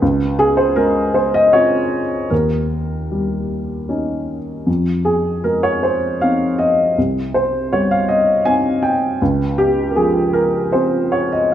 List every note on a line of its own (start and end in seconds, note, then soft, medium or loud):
0.02 2.27 C#2 medium
0.39 0.58 G#4 medium
0.57 0.76 C5 medium
0.76 2.00 G#3 soft
0.76 1.14 A#4 medium
1.14 1.34 C5 medium
1.34 1.53 D#5 medium
1.53 2.27 C4 soft
1.53 2.28 F4 soft
1.53 2.31 C#5 medium
2.30 4.63 D#2 soft
2.30 3.88 A#4 medium
3.11 4.36 G3 soft
3.89 4.63 C#4 soft
3.89 4.63 D#4 soft
4.66 6.92 F2 soft
5.05 5.44 G#4 medium
5.44 6.66 G#3 soft
5.44 5.63 A#4 medium
5.63 5.82 C#5 medium
5.83 6.21 C5 medium
6.21 6.93 C4 soft
6.21 6.93 D#4 soft
6.21 6.59 F5 medium
6.59 6.96 D#5 medium
6.98 9.17 C2 soft
7.34 7.71 C5 medium
7.73 8.91 G3 soft
7.73 7.90 C#5 medium
7.91 8.09 F5 medium
8.09 8.46 D#5 medium
8.45 9.17 C4 soft
8.45 9.17 D#4 soft
8.45 8.83 G#5 medium
8.83 9.20 G5 medium
9.22 11.50 C#2 medium
9.58 9.89 G4 medium
9.90 9.97 A#4 soft
9.96 11.22 F3 soft
9.96 10.35 G#4 medium
10.33 10.73 A#4 medium
10.72 11.49 C4 soft
10.72 11.49 F4 soft
10.72 11.13 C5 medium
11.12 11.32 C#5 medium
11.32 11.53 D#5 medium